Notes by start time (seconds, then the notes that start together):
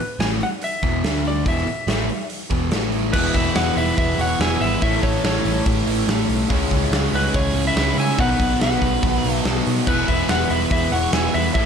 Already playing: B4
0.19 A1 A2 E3 A3 G#5, snare, open hi-hat
0.41 F#5, open hi-hat
0.62 E5, open hi-hat
0.83 E1 E2 B2 E3, kick, open hi-hat
1.03 D2 D3 A3 D4, snare, open hi-hat
1.16 snare
1.25 D5, open hi-hat
1.46 E1 E2 B2 E3 E5, kick, open hi-hat
1.57 snare
1.66 muted picked electric bass stroke, muted distorted electric guitar stroke, muted overdriven electric guitar stroke, open hi-hat
1.87 A1 A2 E3 A3, snare, open hi-hat
2.09 open hi-hat
2.30 open hi-hat
2.50 E1 E2 B2 E3, kick, open hi-hat
2.71 A1 A2 E3 A3, snare, open hi-hat
2.92 open hi-hat
3.12 E1 E2 B2 E3 G#3 B3 E4 B4 G#5, kick, crash
3.34 E1 B4 E5, kick, open hi-hat
3.55 E1 B4 F#5, snare, open hi-hat
3.76 E1 E3 G#3 B3 E4 B4 E5, open hi-hat
3.98 E1 B4 E5, kick, open hi-hat
4.18 E1 E2 B2 E3 C#5 F#5, open hi-hat
4.39 E1 E2 B2 E3 G#3 B3 E4 E5 G#5, snare
4.61 G#1 B4 E5, open hi-hat
4.81 A1 A2 E3 A3 C#4 E4 A4 C#5 E5, kick, open hi-hat
5.03 A1 A4 C#5, kick, open hi-hat
5.24 A1 A4 C#5, snare, open hi-hat
5.45 A1 A2 E3 A3 C#4 E4, open hi-hat
5.66 A1, kick, open hi-hat
5.86 A1 A2 E3 A3, open hi-hat
6.07 A1 A2 E3 A3 C#4 E4, snare, open hi-hat
6.29 B1, open hi-hat
6.49 C#2 C#3 G#3 C#4 E4 C#5 G#5, kick, open hi-hat
6.71 C#2, kick, open hi-hat
6.91 C#2, snare, open hi-hat
7.12 C#2 C#3 G#3 C#4 E4 F#4 B4, open hi-hat
7.34 C#2 G#4 C#5, kick, open hi-hat
7.54 C#2 C#3 G#3 C#4, open hi-hat
7.67 B4 E5
7.76 C#2 C#3 G#3 C#4 E4, snare, open hi-hat
7.97 C#3 E5 G#5, open hi-hat
8.18 B1 B2 D#3 F#3 B3 D#4 B4 F#5, kick
8.40 B1, kick, open hi-hat
8.60 B1 B4 F#5, snare, open hi-hat
8.81 B1 B2 D#3 F#3 B3 D#4, kick, open hi-hat
9.03 B1, kick, open hi-hat
9.24 B1 B2 F#3 B3, open hi-hat
9.31 A4 E5
9.45 B1 B2 D#3 F#3 B3 D#4, snare, open hi-hat
9.66 B2, open hi-hat
9.86 E1 E2 B2 E3 G#3 B3 E4 B4 G#5, kick, crash
9.90 E4
10.08 E1 B4 E5, kick, open hi-hat
10.29 E1 B4 F#5, snare, open hi-hat
10.50 E1 E3 G#3 B3 E4 B4 E5, open hi-hat
10.71 E1 B4 E5, kick, open hi-hat
10.92 E1 E2 B2 E3 C#5 F#5, open hi-hat
11.13 E1 E2 B2 E3 G#3 B3 E4 E5 G#5, snare, open hi-hat
11.34 E2 B4 E5, open hi-hat
11.53 A1 A2 E3 A3 C#4 E4 A4 C#5 E5 A5, kick, open hi-hat
11.57 A3